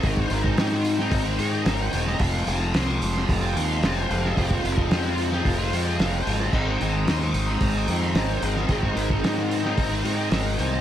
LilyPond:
<<
  \new Staff \with { instrumentName = "Tonewheel organ" } { \time 4/4 \key aes \major \tempo 4 = 111 << { r1 | r1 | r1 | <aes c' ees' ees''>1~ |
<aes c' ees' ees''>1 | } \\ { r1 | r1 | r1 | c''1 |
bes'1 | } >> }
  \new Staff \with { instrumentName = "Overdriven electric guitar" } { \time 4/4 \key aes \major <aes, ees aes c' ees'>8 <ees aes c' ees'>16 <aes c' ees'>16 <aes, ees aes c' ees'>16 <aes c' ees'>8 <aes c' ees'>8 <aes c' ees'>16 <ees aes c' ees'>16 <aes c' ees'>16 <aes, ees aes c' ees'>8 <ees aes c' ees'>16 <aes c' ees'>16 | <f aes c' f'>8 <f aes c' f'>16 <aes c' f'>16 <f aes c' f'>16 <aes c' f'>8 <aes c' f'>8 <aes c' f'>16 <f aes c' f'>16 <aes c' f'>16 <f aes c' f'>8 <f aes c' f'>16 <aes c' f'>16 | <f aes c' f'>8 <f aes c' f'>16 <aes c' f'>16 <f aes c' f'>16 <aes c' f'>8 <aes c' f'>8 <aes c' f'>16 <f aes c' f'>16 <aes c' f'>16 <f aes c' f'>8 <f aes c' f'>16 <aes c' f'>16 | <aes, ees aes c' ees'>8 <ees aes c' ees'>16 <aes c' ees'>16 <aes, ees aes c' ees'>16 <aes c' ees'>8 <aes c' ees'>8 <aes c' ees'>16 <ees aes c' ees'>16 <aes c' ees'>16 <aes, ees aes c' ees'>8 <ees aes c' ees'>16 <aes c' ees'>16 |
<aes, ees aes c' ees'>8 <ees aes c' ees'>16 <aes c' ees'>16 <aes, ees aes c' ees'>16 <aes c' ees'>8 <aes c' ees'>8 <aes c' ees'>16 <ees aes c' ees'>16 <aes c' ees'>16 <aes, ees aes c' ees'>8 <ees aes c' ees'>16 <aes c' ees'>16 | }
  \new Staff \with { instrumentName = "Fingered electric bass" } { \clef bass \time 4/4 \key aes \major aes,,8 aes,,8 aes,4 aes,,8 aes,8 aes,,8 e,,8 | f,,8 f,,8 c,8 f,,8 f,,8 ees,8 f,,8 f,,8 | f,,8 f,,8 f,4 f,,8 f,8 f,,8 aes,,8 | aes,,8 aes,,8 ees,8 aes,,8 aes,,8 f,8 aes,,8 aes,,8 |
aes,,8 aes,,8 aes,4 aes,,8 aes,8 aes,,8 c,8 | }
  \new DrumStaff \with { instrumentName = "Drums" } \drummode { \time 4/4 <hho bd>16 bd16 hho16 bd16 <hho sn>16 sn16 hho16 sn16 <hho bd>8 hho8 <hho sn>8 hho16 sn16 | <hho bd>8 hho8 <hho sn>16 sn16 hho16 sn16 <hho bd>8 hho8 <hho sn>8 hho16 sn16 | <hho bd>16 bd16 hho16 bd16 <hho sn>16 sn16 hho16 sn16 <hho bd>8 hho8 <hho sn>8 hho16 sn16 | <cymc bd>8 hho8 <hho sn>16 sn16 hho8 <hho bd>8 hho8 <hho sn>8 hho16 sn16 |
<hho bd>16 bd16 hho16 bd16 <hho sn>16 sn16 hho16 sn16 <hho bd>8 hho8 <hho sn>8 hho8 | }
>>